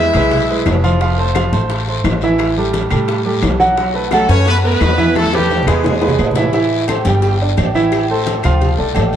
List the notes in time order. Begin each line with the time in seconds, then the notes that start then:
Already playing: E4 E5
0.14 B1 G#3 G#4 B4, high bongo, high conga, low conga, high timbale, short guiro, claves
0.31 high bongo, high conga, low conga, high timbale, long guiro
0.49 G#3 G#4 B4, high bongo, high conga
0.66 F1, high bongo, low bongo, high conga, high timbale, low timbale, short guiro, claves
0.83 F3 F4 F5, high bongo, high conga, short guiro
1.01 F3 F4 F5, high bongo, high timbale, long guiro
1.18 A3 A4 C5, high conga
1.35 F3 F4 F5, high bongo, high conga, high timbale, low timbale, short guiro, claves
1.53 A1 A3 A4 C5, high bongo, high conga, short guiro
1.70 high bongo, high conga, high timbale, long guiro
1.88 A3 A4 C5, high bongo, high conga
2.04 A1, high bongo, low bongo, high conga, high timbale, low timbale, short guiro, claves
2.21 E3 E4 E5, high bongo, high conga, short guiro
2.38 high bongo, high conga, high timbale, long guiro, claves
2.56 G3 G4 A4, high conga
2.73 high bongo, high conga, high timbale, low timbale, short guiro
2.90 A2 G3 G4 A4, high bongo, high conga, low conga, high timbale, short guiro, claves
3.08 high bongo, high conga, high timbale, long guiro
3.25 G3 G4 A4, high bongo, high conga
3.42 B1, high bongo, low bongo, high conga, high timbale, low timbale, short guiro, claves
3.60 F#3 F#4 F#5, high bongo, high conga, short guiro
3.77 F#3 F#4 F#5, high bongo, high conga, high timbale, long guiro
3.94 A3 A4 B4, high conga
4.11 F#3 A3 F#4 A4 F#5, high bongo, high conga, high timbale, low timbale, short guiro, claves
4.28 F#2 A3 C#4 A4 B4 C#5, high bongo, high conga, short guiro
4.46 B3 B4, high bongo, high conga, high timbale, long guiro
4.63 A3 B3 A4 B4, high bongo, high conga
4.81 E2, high bongo, low bongo, high conga, high timbale, low timbale, short guiro, claves
4.97 E3 E4 E5, high bongo, high conga, short guiro
5.15 A3 A4, high bongo, high conga, high timbale, long guiro, claves
5.26 high conga
5.33 G3 A3 G4 A4 B4, high bongo
5.39 high conga
5.50 high conga, high timbale, short guiro
5.63 E2, low conga
5.67 G#3 G#4 B4, high bongo, short guiro, claves
5.84 low bongo, low conga, low timbale, long guiro
6.01 G#3 G#4 B4, low bongo, low timbale
6.08 low conga
6.18 A1, low timbale, short guiro, claves
6.31 low conga, short guiro
6.36 E3 E4 E5, low bongo, low timbale
6.43 low conga
6.53 E3 E4 E5, cowbell, high conga, low agogo, long guiro
6.72 high conga
6.88 A3 A4 C5, cowbell, high conga, low timbale, low agogo, short guiro, claves
7.05 G1 G3 G4 G5, cowbell, high conga, short guiro
7.22 cowbell, high conga, low agogo, long guiro
7.40 D4 D5, high conga
7.57 A1, cowbell, high conga, low timbale, low agogo, short guiro, claves
7.74 E3 E4 E5, high conga, low agogo, short guiro
7.92 cowbell, high conga, low agogo, long guiro, claves
8.10 A3 A4 C5, high conga
8.26 cowbell, high conga, low timbale, low agogo, short guiro
8.43 D2 F3 F4 F5, cowbell, high conga, low conga, low agogo, short guiro, claves
8.61 cowbell, high conga, low conga, low agogo, long guiro
8.78 B1 A3 A4 D5, high conga
8.95 A1 A3 A4 D5, cowbell, high conga, low timbale, low agogo, short guiro, claves
9.13 high conga, low agogo, short guiro